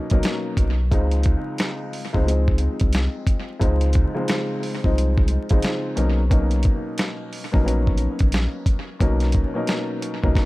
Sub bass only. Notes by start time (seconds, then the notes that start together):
0.12 B1
0.57 B1
0.92 C#2
2.15 C#2
2.81 C2
3.61 C#2
4.84 C2
5.51 A#1
5.97 B1
7.54 A#1
8.21 A#1
9.01 B1
10.24 C#2